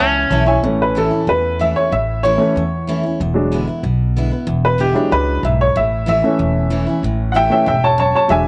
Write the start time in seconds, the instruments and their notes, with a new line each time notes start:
0.00 upright bass C#2, steel-string acoustic guitar E2, clean electric guitar C#4, upright piano A5
0.15 upright piano C#5 E5 G#5
0.29 upright bass B1, steel-string acoustic guitar E3 A3 C#4 E4, upright piano C#5 E5 A5
0.46 steel-string acoustic guitar C#4 E4, upright piano C#5 E5 G#5
0.63 upright bass A1, steel-string acoustic guitar A2, upright piano E3 A3 C#4
0.82 upright piano B4
0.95 steel-string acoustic guitar E3 A3 C#4 E4, upright piano A4
1.11 steel-string acoustic guitar C#4 E4
1.27 upright bass E2, steel-string acoustic guitar E2, upright piano B4
1.59 steel-string acoustic guitar E3 A3 C#4 E4, upright piano E5
1.76 steel-string acoustic guitar C#4 E4, upright piano C#5
1.92 upright bass A1, steel-string acoustic guitar A2, upright piano E5
2.23 steel-string acoustic guitar E3 A3 C#4 E4, upright piano C#5
2.38 upright piano E3 A3 C#4, steel-string acoustic guitar E4
2.42 steel-string acoustic guitar C#4
2.56 upright bass E2, steel-string acoustic guitar E2
2.87 steel-string acoustic guitar E3 A3 C#4 E4
3.03 steel-string acoustic guitar C#4 E4
3.20 upright bass E1, steel-string acoustic guitar E2
3.34 upright piano F#3 G#3 D4
3.52 steel-string acoustic guitar D3 G#3 B3 E4
3.67 steel-string acoustic guitar B3 E4
3.83 upright bass B1, steel-string acoustic guitar B2
4.16 steel-string acoustic guitar D3 G#3 B3 E4
4.31 steel-string acoustic guitar B3 E4
4.47 upright bass E1, steel-string acoustic guitar E2
4.65 upright piano B4
4.78 steel-string acoustic guitar D3 G#3 B3 E4, upright piano G4
4.94 upright piano F#3 G#3 D4, steel-string acoustic guitar B3 E4
5.12 upright bass C#2, steel-string acoustic guitar F#2, upright piano B4
5.43 upright bass B1, steel-string acoustic guitar G#2, upright piano E5
5.61 upright piano C#5
5.76 upright bass A1, steel-string acoustic guitar A2, upright piano E5
6.06 steel-string acoustic guitar E3 A3 C#4 E4, upright piano E5
6.22 upright piano E3 A3 C#4, steel-string acoustic guitar C#4 E4
6.39 upright bass E1, steel-string acoustic guitar E2
6.70 steel-string acoustic guitar E3 A3 C#4 E4
6.87 steel-string acoustic guitar C#4 E4
7.03 upright bass A1, steel-string acoustic guitar A2
7.32 steel-string acoustic guitar E3 A3 C#4, upright piano E5 F#5
7.36 steel-string acoustic guitar E4, upright piano G5
7.50 upright piano E3 A3 C#4 E5 G5
7.66 upright bass E1, steel-string acoustic guitar G#2, upright piano E5 G5
7.84 upright piano C#5 A5
7.98 steel-string acoustic guitar F#2, upright piano C#5 A5
8.15 upright piano C#5 A5
8.28 upright bass E1, steel-string acoustic guitar E2, upright piano F#3 G#3 D4 E5 G#5